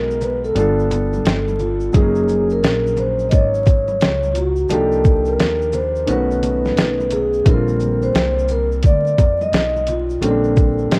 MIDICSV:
0, 0, Header, 1, 5, 480
1, 0, Start_track
1, 0, Tempo, 689655
1, 1353, Time_signature, 4, 2, 24, 8
1, 7652, End_track
2, 0, Start_track
2, 0, Title_t, "Vibraphone"
2, 0, Program_c, 0, 11
2, 0, Note_on_c, 0, 70, 84
2, 156, Note_on_c, 0, 71, 87
2, 165, Note_off_c, 0, 70, 0
2, 224, Note_off_c, 0, 71, 0
2, 310, Note_on_c, 0, 69, 87
2, 1118, Note_on_c, 0, 65, 75
2, 1139, Note_off_c, 0, 69, 0
2, 1356, Note_on_c, 0, 68, 92
2, 1362, Note_off_c, 0, 65, 0
2, 1719, Note_off_c, 0, 68, 0
2, 1754, Note_on_c, 0, 70, 90
2, 2076, Note_on_c, 0, 72, 86
2, 2087, Note_off_c, 0, 70, 0
2, 2264, Note_off_c, 0, 72, 0
2, 2292, Note_on_c, 0, 75, 78
2, 2316, Note_on_c, 0, 73, 97
2, 2320, Note_off_c, 0, 75, 0
2, 3015, Note_on_c, 0, 65, 63
2, 3019, Note_off_c, 0, 73, 0
2, 3042, Note_off_c, 0, 65, 0
2, 3044, Note_on_c, 0, 66, 78
2, 3282, Note_on_c, 0, 69, 95
2, 3286, Note_off_c, 0, 66, 0
2, 3677, Note_on_c, 0, 70, 88
2, 3681, Note_off_c, 0, 69, 0
2, 3994, Note_on_c, 0, 72, 93
2, 4008, Note_off_c, 0, 70, 0
2, 4237, Note_on_c, 0, 71, 105
2, 4241, Note_off_c, 0, 72, 0
2, 4953, Note_on_c, 0, 68, 81
2, 4976, Note_off_c, 0, 71, 0
2, 5196, Note_on_c, 0, 70, 99
2, 5200, Note_off_c, 0, 68, 0
2, 5589, Note_on_c, 0, 72, 100
2, 5598, Note_off_c, 0, 70, 0
2, 5892, Note_off_c, 0, 72, 0
2, 5920, Note_on_c, 0, 70, 100
2, 6027, Note_off_c, 0, 70, 0
2, 6165, Note_on_c, 0, 74, 110
2, 6524, Note_off_c, 0, 74, 0
2, 6554, Note_on_c, 0, 75, 103
2, 6880, Note_on_c, 0, 65, 83
2, 6887, Note_off_c, 0, 75, 0
2, 7118, Note_on_c, 0, 69, 92
2, 7123, Note_off_c, 0, 65, 0
2, 7567, Note_off_c, 0, 69, 0
2, 7598, Note_on_c, 0, 67, 92
2, 7652, Note_off_c, 0, 67, 0
2, 7652, End_track
3, 0, Start_track
3, 0, Title_t, "Grand piano"
3, 0, Program_c, 1, 0
3, 0, Note_on_c, 1, 56, 63
3, 0, Note_on_c, 1, 59, 57
3, 0, Note_on_c, 1, 63, 57
3, 0, Note_on_c, 1, 66, 58
3, 0, Note_on_c, 1, 70, 67
3, 369, Note_off_c, 1, 56, 0
3, 371, Note_off_c, 1, 59, 0
3, 374, Note_off_c, 1, 63, 0
3, 376, Note_off_c, 1, 66, 0
3, 379, Note_off_c, 1, 70, 0
3, 384, Note_on_c, 1, 55, 59
3, 392, Note_on_c, 1, 59, 55
3, 397, Note_on_c, 1, 62, 55
3, 401, Note_on_c, 1, 65, 56
3, 408, Note_on_c, 1, 69, 64
3, 1329, Note_off_c, 1, 55, 0
3, 1333, Note_off_c, 1, 59, 0
3, 1336, Note_off_c, 1, 62, 0
3, 1338, Note_off_c, 1, 65, 0
3, 1341, Note_off_c, 1, 69, 0
3, 1343, Note_on_c, 1, 54, 62
3, 1350, Note_on_c, 1, 56, 42
3, 1353, Note_on_c, 1, 61, 52
3, 1358, Note_on_c, 1, 63, 58
3, 1365, Note_on_c, 1, 68, 64
3, 1393, Note_on_c, 1, 58, 58
3, 1409, Note_off_c, 1, 56, 0
3, 3240, Note_off_c, 1, 54, 0
3, 3245, Note_off_c, 1, 61, 0
3, 3247, Note_off_c, 1, 63, 0
3, 3251, Note_off_c, 1, 68, 0
3, 3259, Note_off_c, 1, 58, 0
3, 3264, Note_on_c, 1, 53, 62
3, 3269, Note_on_c, 1, 58, 58
3, 3271, Note_on_c, 1, 62, 57
3, 3278, Note_on_c, 1, 63, 57
3, 3285, Note_on_c, 1, 67, 67
3, 4209, Note_off_c, 1, 53, 0
3, 4212, Note_off_c, 1, 58, 0
3, 4213, Note_off_c, 1, 62, 0
3, 4216, Note_off_c, 1, 63, 0
3, 4220, Note_off_c, 1, 67, 0
3, 4221, Note_on_c, 1, 51, 66
3, 4228, Note_on_c, 1, 57, 58
3, 4234, Note_on_c, 1, 59, 57
3, 4238, Note_on_c, 1, 61, 55
3, 4242, Note_on_c, 1, 66, 70
3, 5167, Note_off_c, 1, 51, 0
3, 5171, Note_off_c, 1, 57, 0
3, 5174, Note_off_c, 1, 59, 0
3, 5176, Note_off_c, 1, 61, 0
3, 5178, Note_off_c, 1, 66, 0
3, 5182, Note_on_c, 1, 50, 60
3, 5188, Note_on_c, 1, 55, 58
3, 5193, Note_on_c, 1, 58, 57
3, 5198, Note_on_c, 1, 60, 59
3, 5204, Note_on_c, 1, 64, 52
3, 5247, Note_on_c, 1, 65, 65
3, 5256, Note_off_c, 1, 64, 0
3, 7080, Note_off_c, 1, 50, 0
3, 7083, Note_off_c, 1, 55, 0
3, 7085, Note_off_c, 1, 58, 0
3, 7087, Note_off_c, 1, 60, 0
3, 7105, Note_on_c, 1, 50, 59
3, 7112, Note_off_c, 1, 65, 0
3, 7112, Note_on_c, 1, 55, 56
3, 7115, Note_on_c, 1, 58, 57
3, 7121, Note_on_c, 1, 60, 55
3, 7125, Note_on_c, 1, 61, 54
3, 7170, Note_on_c, 1, 62, 67
3, 7176, Note_off_c, 1, 61, 0
3, 7652, Note_off_c, 1, 50, 0
3, 7652, Note_off_c, 1, 55, 0
3, 7652, Note_off_c, 1, 58, 0
3, 7652, Note_off_c, 1, 60, 0
3, 7652, Note_off_c, 1, 62, 0
3, 7652, End_track
4, 0, Start_track
4, 0, Title_t, "Upright bass"
4, 0, Program_c, 2, 32
4, 0, Note_on_c, 2, 35, 95
4, 367, Note_off_c, 2, 35, 0
4, 386, Note_on_c, 2, 31, 104
4, 845, Note_off_c, 2, 31, 0
4, 870, Note_on_c, 2, 31, 92
4, 1327, Note_off_c, 2, 31, 0
4, 1353, Note_on_c, 2, 30, 88
4, 1809, Note_off_c, 2, 30, 0
4, 1830, Note_on_c, 2, 34, 88
4, 2287, Note_off_c, 2, 34, 0
4, 2315, Note_on_c, 2, 32, 92
4, 2770, Note_off_c, 2, 32, 0
4, 2793, Note_on_c, 2, 37, 90
4, 3249, Note_off_c, 2, 37, 0
4, 3266, Note_on_c, 2, 36, 98
4, 3725, Note_off_c, 2, 36, 0
4, 3750, Note_on_c, 2, 39, 80
4, 4207, Note_off_c, 2, 39, 0
4, 4230, Note_on_c, 2, 35, 92
4, 4687, Note_off_c, 2, 35, 0
4, 4706, Note_on_c, 2, 35, 86
4, 5165, Note_off_c, 2, 35, 0
4, 5189, Note_on_c, 2, 34, 106
4, 5647, Note_off_c, 2, 34, 0
4, 5667, Note_on_c, 2, 36, 93
4, 6126, Note_off_c, 2, 36, 0
4, 6153, Note_on_c, 2, 38, 85
4, 6381, Note_off_c, 2, 38, 0
4, 6394, Note_on_c, 2, 41, 84
4, 6622, Note_off_c, 2, 41, 0
4, 6628, Note_on_c, 2, 35, 93
4, 7086, Note_off_c, 2, 35, 0
4, 7109, Note_on_c, 2, 34, 97
4, 7567, Note_off_c, 2, 34, 0
4, 7594, Note_on_c, 2, 33, 90
4, 7652, Note_off_c, 2, 33, 0
4, 7652, End_track
5, 0, Start_track
5, 0, Title_t, "Drums"
5, 74, Note_on_c, 9, 82, 50
5, 144, Note_off_c, 9, 82, 0
5, 147, Note_on_c, 9, 82, 58
5, 148, Note_off_c, 9, 82, 0
5, 148, Note_on_c, 9, 64, 58
5, 148, Note_on_c, 9, 82, 39
5, 218, Note_off_c, 9, 64, 0
5, 218, Note_off_c, 9, 82, 0
5, 310, Note_on_c, 9, 82, 44
5, 379, Note_off_c, 9, 82, 0
5, 389, Note_on_c, 9, 42, 74
5, 408, Note_on_c, 9, 63, 44
5, 408, Note_on_c, 9, 82, 62
5, 458, Note_off_c, 9, 42, 0
5, 477, Note_off_c, 9, 63, 0
5, 477, Note_off_c, 9, 82, 0
5, 552, Note_on_c, 9, 82, 45
5, 622, Note_off_c, 9, 82, 0
5, 633, Note_on_c, 9, 64, 71
5, 633, Note_on_c, 9, 82, 52
5, 636, Note_off_c, 9, 82, 0
5, 636, Note_on_c, 9, 42, 50
5, 636, Note_on_c, 9, 82, 46
5, 703, Note_off_c, 9, 64, 0
5, 705, Note_off_c, 9, 42, 0
5, 705, Note_off_c, 9, 82, 0
5, 788, Note_on_c, 9, 63, 61
5, 788, Note_on_c, 9, 82, 50
5, 858, Note_off_c, 9, 63, 0
5, 858, Note_off_c, 9, 82, 0
5, 873, Note_on_c, 9, 42, 68
5, 876, Note_on_c, 9, 82, 56
5, 882, Note_on_c, 9, 38, 109
5, 943, Note_off_c, 9, 42, 0
5, 945, Note_off_c, 9, 82, 0
5, 952, Note_off_c, 9, 38, 0
5, 1031, Note_on_c, 9, 63, 58
5, 1031, Note_on_c, 9, 82, 38
5, 1101, Note_off_c, 9, 63, 0
5, 1101, Note_off_c, 9, 82, 0
5, 1108, Note_on_c, 9, 82, 53
5, 1110, Note_off_c, 9, 82, 0
5, 1110, Note_on_c, 9, 64, 57
5, 1110, Note_on_c, 9, 82, 42
5, 1180, Note_off_c, 9, 64, 0
5, 1180, Note_off_c, 9, 82, 0
5, 1255, Note_on_c, 9, 82, 43
5, 1324, Note_off_c, 9, 82, 0
5, 1343, Note_on_c, 9, 82, 62
5, 1353, Note_on_c, 9, 36, 95
5, 1354, Note_on_c, 9, 42, 88
5, 1412, Note_off_c, 9, 82, 0
5, 1423, Note_off_c, 9, 36, 0
5, 1423, Note_off_c, 9, 42, 0
5, 1499, Note_on_c, 9, 82, 42
5, 1569, Note_off_c, 9, 82, 0
5, 1589, Note_on_c, 9, 63, 47
5, 1589, Note_on_c, 9, 82, 49
5, 1593, Note_off_c, 9, 82, 0
5, 1593, Note_on_c, 9, 82, 52
5, 1658, Note_off_c, 9, 63, 0
5, 1663, Note_off_c, 9, 82, 0
5, 1739, Note_on_c, 9, 82, 43
5, 1809, Note_off_c, 9, 82, 0
5, 1836, Note_on_c, 9, 42, 64
5, 1836, Note_on_c, 9, 82, 55
5, 1841, Note_on_c, 9, 38, 110
5, 1906, Note_off_c, 9, 42, 0
5, 1906, Note_off_c, 9, 82, 0
5, 1910, Note_off_c, 9, 38, 0
5, 1995, Note_on_c, 9, 82, 49
5, 2064, Note_off_c, 9, 82, 0
5, 2064, Note_on_c, 9, 82, 60
5, 2065, Note_off_c, 9, 82, 0
5, 2065, Note_on_c, 9, 64, 56
5, 2065, Note_on_c, 9, 82, 39
5, 2134, Note_off_c, 9, 64, 0
5, 2134, Note_off_c, 9, 82, 0
5, 2221, Note_on_c, 9, 82, 42
5, 2290, Note_off_c, 9, 82, 0
5, 2306, Note_on_c, 9, 42, 79
5, 2313, Note_on_c, 9, 63, 48
5, 2313, Note_on_c, 9, 82, 67
5, 2314, Note_on_c, 9, 36, 85
5, 2375, Note_off_c, 9, 42, 0
5, 2383, Note_off_c, 9, 63, 0
5, 2383, Note_off_c, 9, 82, 0
5, 2384, Note_off_c, 9, 36, 0
5, 2466, Note_on_c, 9, 82, 46
5, 2535, Note_off_c, 9, 82, 0
5, 2545, Note_on_c, 9, 64, 70
5, 2545, Note_on_c, 9, 82, 55
5, 2552, Note_on_c, 9, 36, 98
5, 2555, Note_off_c, 9, 82, 0
5, 2555, Note_on_c, 9, 42, 47
5, 2555, Note_on_c, 9, 82, 45
5, 2615, Note_off_c, 9, 64, 0
5, 2622, Note_off_c, 9, 36, 0
5, 2625, Note_off_c, 9, 42, 0
5, 2625, Note_off_c, 9, 82, 0
5, 2700, Note_on_c, 9, 63, 64
5, 2700, Note_on_c, 9, 82, 47
5, 2770, Note_off_c, 9, 63, 0
5, 2770, Note_off_c, 9, 82, 0
5, 2786, Note_on_c, 9, 82, 57
5, 2792, Note_on_c, 9, 42, 66
5, 2800, Note_on_c, 9, 38, 107
5, 2856, Note_off_c, 9, 82, 0
5, 2861, Note_off_c, 9, 42, 0
5, 2870, Note_off_c, 9, 38, 0
5, 2945, Note_on_c, 9, 63, 55
5, 2945, Note_on_c, 9, 82, 40
5, 3014, Note_off_c, 9, 63, 0
5, 3014, Note_off_c, 9, 82, 0
5, 3027, Note_on_c, 9, 42, 56
5, 3027, Note_on_c, 9, 82, 53
5, 3030, Note_off_c, 9, 82, 0
5, 3030, Note_on_c, 9, 64, 56
5, 3030, Note_on_c, 9, 82, 42
5, 3097, Note_off_c, 9, 42, 0
5, 3099, Note_off_c, 9, 64, 0
5, 3099, Note_off_c, 9, 82, 0
5, 3173, Note_on_c, 9, 82, 42
5, 3243, Note_off_c, 9, 82, 0
5, 3261, Note_on_c, 9, 82, 64
5, 3274, Note_on_c, 9, 42, 91
5, 3331, Note_off_c, 9, 82, 0
5, 3343, Note_off_c, 9, 42, 0
5, 3423, Note_on_c, 9, 82, 41
5, 3493, Note_off_c, 9, 82, 0
5, 3510, Note_on_c, 9, 63, 47
5, 3510, Note_on_c, 9, 82, 48
5, 3511, Note_off_c, 9, 82, 0
5, 3511, Note_on_c, 9, 82, 50
5, 3515, Note_on_c, 9, 36, 89
5, 3580, Note_off_c, 9, 63, 0
5, 3580, Note_off_c, 9, 82, 0
5, 3584, Note_off_c, 9, 36, 0
5, 3657, Note_on_c, 9, 82, 45
5, 3727, Note_off_c, 9, 82, 0
5, 3756, Note_on_c, 9, 42, 63
5, 3756, Note_on_c, 9, 82, 59
5, 3760, Note_on_c, 9, 38, 105
5, 3825, Note_off_c, 9, 42, 0
5, 3826, Note_off_c, 9, 82, 0
5, 3830, Note_off_c, 9, 38, 0
5, 3911, Note_on_c, 9, 82, 50
5, 3980, Note_off_c, 9, 82, 0
5, 3985, Note_on_c, 9, 82, 59
5, 3990, Note_off_c, 9, 82, 0
5, 3990, Note_on_c, 9, 64, 58
5, 3990, Note_on_c, 9, 82, 41
5, 4059, Note_off_c, 9, 64, 0
5, 4059, Note_off_c, 9, 82, 0
5, 4147, Note_on_c, 9, 82, 43
5, 4216, Note_off_c, 9, 82, 0
5, 4228, Note_on_c, 9, 42, 78
5, 4244, Note_on_c, 9, 63, 45
5, 4244, Note_on_c, 9, 82, 63
5, 4297, Note_off_c, 9, 42, 0
5, 4313, Note_off_c, 9, 63, 0
5, 4313, Note_off_c, 9, 82, 0
5, 4393, Note_on_c, 9, 82, 48
5, 4462, Note_off_c, 9, 82, 0
5, 4474, Note_on_c, 9, 42, 50
5, 4474, Note_on_c, 9, 82, 49
5, 4475, Note_off_c, 9, 82, 0
5, 4475, Note_on_c, 9, 64, 72
5, 4475, Note_on_c, 9, 82, 53
5, 4543, Note_off_c, 9, 42, 0
5, 4544, Note_off_c, 9, 64, 0
5, 4544, Note_off_c, 9, 82, 0
5, 4630, Note_on_c, 9, 63, 65
5, 4630, Note_on_c, 9, 82, 46
5, 4633, Note_on_c, 9, 38, 31
5, 4699, Note_off_c, 9, 63, 0
5, 4699, Note_off_c, 9, 82, 0
5, 4703, Note_off_c, 9, 38, 0
5, 4713, Note_on_c, 9, 42, 67
5, 4720, Note_on_c, 9, 82, 54
5, 4722, Note_on_c, 9, 38, 112
5, 4783, Note_off_c, 9, 42, 0
5, 4789, Note_off_c, 9, 82, 0
5, 4791, Note_off_c, 9, 38, 0
5, 4873, Note_on_c, 9, 63, 56
5, 4873, Note_on_c, 9, 82, 40
5, 4943, Note_off_c, 9, 63, 0
5, 4943, Note_off_c, 9, 82, 0
5, 4945, Note_on_c, 9, 42, 54
5, 4945, Note_on_c, 9, 82, 54
5, 4956, Note_off_c, 9, 82, 0
5, 4956, Note_on_c, 9, 64, 60
5, 4956, Note_on_c, 9, 82, 40
5, 5014, Note_off_c, 9, 42, 0
5, 5026, Note_off_c, 9, 64, 0
5, 5026, Note_off_c, 9, 82, 0
5, 5104, Note_on_c, 9, 82, 47
5, 5173, Note_off_c, 9, 82, 0
5, 5190, Note_on_c, 9, 42, 90
5, 5191, Note_on_c, 9, 36, 107
5, 5191, Note_on_c, 9, 82, 64
5, 5260, Note_off_c, 9, 36, 0
5, 5260, Note_off_c, 9, 42, 0
5, 5261, Note_off_c, 9, 82, 0
5, 5345, Note_on_c, 9, 82, 42
5, 5414, Note_off_c, 9, 82, 0
5, 5428, Note_on_c, 9, 82, 50
5, 5435, Note_off_c, 9, 82, 0
5, 5435, Note_on_c, 9, 63, 47
5, 5435, Note_on_c, 9, 82, 47
5, 5505, Note_off_c, 9, 63, 0
5, 5505, Note_off_c, 9, 82, 0
5, 5583, Note_on_c, 9, 82, 45
5, 5652, Note_off_c, 9, 82, 0
5, 5673, Note_on_c, 9, 42, 61
5, 5674, Note_on_c, 9, 82, 58
5, 5678, Note_on_c, 9, 38, 111
5, 5743, Note_off_c, 9, 42, 0
5, 5743, Note_off_c, 9, 82, 0
5, 5747, Note_off_c, 9, 38, 0
5, 5838, Note_on_c, 9, 82, 50
5, 5904, Note_off_c, 9, 82, 0
5, 5904, Note_on_c, 9, 82, 59
5, 5913, Note_off_c, 9, 82, 0
5, 5913, Note_on_c, 9, 64, 60
5, 5913, Note_on_c, 9, 82, 39
5, 5982, Note_off_c, 9, 64, 0
5, 5982, Note_off_c, 9, 82, 0
5, 6068, Note_on_c, 9, 82, 45
5, 6138, Note_off_c, 9, 82, 0
5, 6143, Note_on_c, 9, 42, 77
5, 6153, Note_on_c, 9, 36, 80
5, 6163, Note_on_c, 9, 63, 47
5, 6163, Note_on_c, 9, 82, 64
5, 6213, Note_off_c, 9, 42, 0
5, 6222, Note_off_c, 9, 36, 0
5, 6233, Note_off_c, 9, 63, 0
5, 6233, Note_off_c, 9, 82, 0
5, 6311, Note_on_c, 9, 82, 47
5, 6380, Note_off_c, 9, 82, 0
5, 6392, Note_on_c, 9, 36, 94
5, 6392, Note_on_c, 9, 42, 49
5, 6392, Note_on_c, 9, 82, 47
5, 6394, Note_off_c, 9, 82, 0
5, 6394, Note_on_c, 9, 64, 74
5, 6394, Note_on_c, 9, 82, 53
5, 6461, Note_off_c, 9, 36, 0
5, 6461, Note_off_c, 9, 42, 0
5, 6464, Note_off_c, 9, 64, 0
5, 6464, Note_off_c, 9, 82, 0
5, 6551, Note_on_c, 9, 63, 64
5, 6551, Note_on_c, 9, 82, 45
5, 6620, Note_off_c, 9, 63, 0
5, 6620, Note_off_c, 9, 82, 0
5, 6634, Note_on_c, 9, 42, 63
5, 6642, Note_on_c, 9, 38, 116
5, 6643, Note_on_c, 9, 82, 56
5, 6703, Note_off_c, 9, 42, 0
5, 6712, Note_off_c, 9, 38, 0
5, 6712, Note_off_c, 9, 82, 0
5, 6796, Note_on_c, 9, 63, 55
5, 6796, Note_on_c, 9, 82, 38
5, 6865, Note_off_c, 9, 63, 0
5, 6865, Note_off_c, 9, 82, 0
5, 6868, Note_on_c, 9, 42, 56
5, 6868, Note_on_c, 9, 82, 51
5, 6879, Note_off_c, 9, 82, 0
5, 6879, Note_on_c, 9, 64, 59
5, 6879, Note_on_c, 9, 82, 39
5, 6938, Note_off_c, 9, 42, 0
5, 6949, Note_off_c, 9, 64, 0
5, 6949, Note_off_c, 9, 82, 0
5, 7028, Note_on_c, 9, 82, 46
5, 7098, Note_off_c, 9, 82, 0
5, 7113, Note_on_c, 9, 82, 60
5, 7116, Note_on_c, 9, 42, 91
5, 7183, Note_off_c, 9, 82, 0
5, 7186, Note_off_c, 9, 42, 0
5, 7265, Note_on_c, 9, 82, 41
5, 7334, Note_off_c, 9, 82, 0
5, 7352, Note_on_c, 9, 82, 50
5, 7356, Note_on_c, 9, 36, 87
5, 7359, Note_off_c, 9, 82, 0
5, 7359, Note_on_c, 9, 63, 49
5, 7359, Note_on_c, 9, 82, 49
5, 7425, Note_off_c, 9, 36, 0
5, 7429, Note_off_c, 9, 63, 0
5, 7429, Note_off_c, 9, 82, 0
5, 7505, Note_on_c, 9, 82, 44
5, 7575, Note_off_c, 9, 82, 0
5, 7596, Note_on_c, 9, 42, 65
5, 7600, Note_on_c, 9, 82, 59
5, 7601, Note_on_c, 9, 38, 107
5, 7652, Note_off_c, 9, 38, 0
5, 7652, Note_off_c, 9, 42, 0
5, 7652, Note_off_c, 9, 82, 0
5, 7652, End_track
0, 0, End_of_file